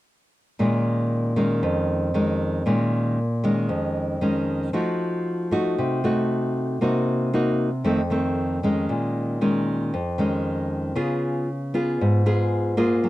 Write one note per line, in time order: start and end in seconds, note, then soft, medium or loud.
0.59 1.60 A#2 medium
0.59 1.32 D#3 soft
0.59 1.33 G#3 soft
0.59 1.33 C#4 soft
1.36 2.10 D#3 soft
1.36 2.10 G#3 soft
1.36 2.10 C#4 medium
1.63 2.64 F2 medium
2.14 2.62 D#3 soft
2.14 2.62 G#3 soft
2.14 2.62 C#4 soft
2.66 3.67 A#2 medium
2.66 3.18 D#3 soft
2.66 3.18 G#3 soft
2.66 3.18 C#4 soft
3.44 4.18 D#3 soft
3.44 4.18 G#3 soft
3.44 4.18 C#4 medium
3.69 4.71 F2 medium
4.21 4.69 D#3 soft
4.21 4.70 G#3 soft
4.21 4.70 C#4 soft
4.73 5.75 F3 medium
4.73 5.47 A3 soft
4.73 5.48 D#4 soft
4.73 5.48 F#4 soft
5.51 5.99 A3 soft
5.51 6.00 D#4 soft
5.51 6.00 F#4 medium
5.78 6.79 C3 medium
6.04 6.77 A3 soft
6.04 6.78 D#4 soft
6.04 6.78 F#4 medium
6.81 7.83 C3 medium
6.81 7.29 A#3 soft
6.81 7.29 D#4 soft
6.81 7.30 F#4 soft
7.33 7.68 A#3 soft
7.33 7.68 D#4 soft
7.33 7.69 F#4 soft
7.84 8.86 F2 medium
7.84 8.00 D#3 soft
7.84 8.00 A3 soft
7.84 8.01 C4 medium
8.10 8.58 D#3 soft
8.10 8.59 A3 soft
8.10 8.59 C4 medium
8.63 9.39 D#3 soft
8.63 9.39 G#3 medium
8.63 9.39 C#4 medium
8.89 9.90 A#2 medium
9.41 9.93 D#3 soft
9.41 9.93 G#3 soft
9.41 9.93 C#4 soft
9.94 10.94 F2 medium
10.18 10.92 D#3 medium
10.18 10.93 G#3 soft
10.18 10.93 C#4 medium
10.95 11.97 C#3 medium
10.95 11.47 B3 soft
10.95 11.48 F4 medium
10.95 11.48 G#4 soft
11.74 12.22 B3 soft
11.74 12.22 F4 soft
11.74 12.22 G#4 medium
12.01 13.02 G#2 medium
12.26 12.74 B3 soft
12.26 12.74 F4 medium
12.26 12.74 G#4 medium
12.77 13.09 A#3 medium
12.77 13.09 F4 medium
12.77 13.09 G#4 medium
13.04 13.09 F#3 medium